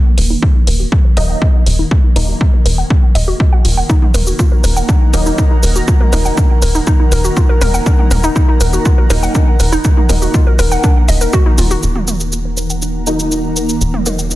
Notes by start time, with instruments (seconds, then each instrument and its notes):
Already playing: synth drone D#3 A#3
0.18 analog synth bass D#1, synth arpeggio sound A#4, open hi-hat
0.30 synth arpeggio sound D#4
0.42 synth arpeggio sound D#4, kick
0.55 synth arpeggio sound D#4
0.67 analog synth bass D#1, synth arpeggio sound A#4, open hi-hat
0.80 synth arpeggio sound F#4
0.92 synth arpeggio sound F4, kick
1.05 synth arpeggio sound A#4
1.17 analog synth bass D#1, synth stab F#3 A#3 D#4, synth arpeggio sound A#4, open hi-hat
1.29 synth arpeggio sound F#5
1.42 synth arpeggio sound D4, kick
1.66 analog synth bass D#1, synth arpeggio sound A#4, open hi-hat
1.79 synth arpeggio sound D#4
1.91 synth arpeggio sound D#4, kick
2.04 synth arpeggio sound D#4
2.16 analog synth bass D#1, synth stab F#3 A#3 D#4, synth arpeggio sound A#4, open hi-hat
2.29 synth arpeggio sound F#4
2.41 synth arpeggio sound F4, kick
2.53 synth arpeggio sound A#4
2.66 analog synth bass D#1, synth arpeggio sound A#4, open hi-hat
2.78 synth arpeggio sound F#5
2.90 synth arpeggio sound D4, kick
3.15 analog synth bass D#1, synth arpeggio sound D#5, open hi-hat
3.28 synth arpeggio sound F#4
3.40 synth arpeggio sound F4, kick
3.53 synth arpeggio sound F#5
3.65 analog synth bass D#1, synth arpeggio sound F4, open hi-hat
3.77 synth arpeggio sound F#5
3.90 synth arpeggio sound D#4, analog synth pad D#4 A#4 F#5 A#5, kick, shaker
4.02 synth arpeggio sound D#4, mid tom
4.14 analog synth bass D#1, synth arpeggio sound A#4, mid tom, open hi-hat, shaker
4.27 synth arpeggio sound F#4, shaker
4.39 synth arpeggio sound F4, kick, shaker
4.52 synth arpeggio sound A#4
4.64 analog synth bass D#1, synth arpeggio sound A#4, open hi-hat, shaker
4.77 synth arpeggio sound F#5, shaker
4.89 synth arpeggio sound D4, kick, shaker
5.13 analog synth bass D#1, synth stab F#3 A#3 D#4, synth arpeggio sound A#4, open hi-hat, shaker
5.26 synth arpeggio sound D#4, shaker
5.38 synth arpeggio sound D#4, kick, shaker
5.51 synth arpeggio sound D#4
5.63 analog synth bass D#1, synth arpeggio sound A#4, open hi-hat, shaker
5.76 synth arpeggio sound F#4, shaker
5.88 synth arpeggio sound F4, kick, shaker
6.01 synth arpeggio sound A#4, mid tom
6.13 analog synth bass D#1, synth stab F#3 A#3 D#4, synth arpeggio sound A#4, mid tom, open hi-hat, shaker
6.25 synth arpeggio sound F#5, shaker
6.37 synth arpeggio sound D4, kick, shaker
6.62 analog synth bass D#1, synth arpeggio sound A#4, open hi-hat, shaker
6.75 synth arpeggio sound D#4, shaker
6.87 synth arpeggio sound D#4, kick, shaker
7.00 synth arpeggio sound D#4
7.12 analog synth bass D#1, synth arpeggio sound A#4, open hi-hat, shaker
7.24 synth arpeggio sound F#4, shaker
7.37 synth arpeggio sound F4, kick, shaker
7.49 synth arpeggio sound A#4
7.61 analog synth bass D#1, synth arpeggio sound A#4, mid tom, open hi-hat, shaker
7.74 synth arpeggio sound F#5, shaker
7.86 synth arpeggio sound D4, kick, shaker
7.99 mid tom
8.11 analog synth bass D#1, synth arpeggio sound A#4, mid tom, open hi-hat, shaker
8.24 synth arpeggio sound D#4, shaker
8.36 synth arpeggio sound D#4, kick, shaker
8.48 synth arpeggio sound D#4
8.61 analog synth bass D#1, synth arpeggio sound A#4, open hi-hat, shaker
8.73 synth arpeggio sound F#4, shaker
8.85 synth arpeggio sound F4, kick, shaker
8.98 synth arpeggio sound A#4
9.10 analog synth bass D#1, synth stab F#3 A#3 D#4, synth arpeggio sound A#4, open hi-hat, shaker
9.23 synth arpeggio sound F#5, shaker
9.35 synth arpeggio sound D4, kick, shaker
9.60 analog synth bass D#1, synth arpeggio sound A#4, open hi-hat, shaker
9.72 synth arpeggio sound D#4, shaker
9.85 synth arpeggio sound D#4, kick, shaker
9.97 synth arpeggio sound D#4, mid tom
10.09 analog synth bass D#1, synth stab F#3 A#3 D#4, synth arpeggio sound A#4, mid tom, open hi-hat, shaker
10.22 synth arpeggio sound F#4, shaker
10.34 synth arpeggio sound F4, kick, shaker
10.47 synth arpeggio sound A#4
10.59 analog synth bass D#1, synth arpeggio sound A#4, open hi-hat, shaker
10.72 synth arpeggio sound F#5, shaker
10.84 synth arpeggio sound D4, kick, shaker
11.09 analog synth bass D#1, synth arpeggio sound D#5, open hi-hat, shaker
11.21 synth arpeggio sound A#4, shaker
11.33 synth arpeggio sound F#4, kick, shaker
11.46 synth arpeggio sound D#4
11.58 analog synth bass D#1, synth arpeggio sound F4, mid tom, open hi-hat, shaker
11.71 synth arpeggio sound F#4, shaker
11.83 analog synth bass D#1, synth drone D#3 A#3, analog synth pad D#4 A#4 F#5 A#5, synth arpeggio sound D#4, shaker
11.96 synth arpeggio sound D#4, mid tom
12.08 synth arpeggio sound A#4, mid tom, shaker
12.20 synth arpeggio sound F#4, shaker
12.32 synth arpeggio sound F4, shaker
12.45 synth arpeggio sound A#4
12.57 synth arpeggio sound A#4, shaker
12.70 synth arpeggio sound F#5, shaker
12.82 synth arpeggio sound D4, shaker
13.07 synth stab F#3 A#3 D#4, synth arpeggio sound A#4, shaker
13.20 synth arpeggio sound D#4, shaker
13.32 synth arpeggio sound D#4, shaker
13.44 synth arpeggio sound D#4
13.56 synth arpeggio sound A#4, shaker
13.69 synth arpeggio sound F#4, shaker
13.81 analog synth bass D#1, synth arpeggio sound F4, shaker
13.94 synth arpeggio sound A#4, mid tom
14.06 synth stab F#3 A#3 D#4, synth arpeggio sound A#4, mid tom, shaker
14.19 synth arpeggio sound F#5, shaker
14.31 synth arpeggio sound D4, shaker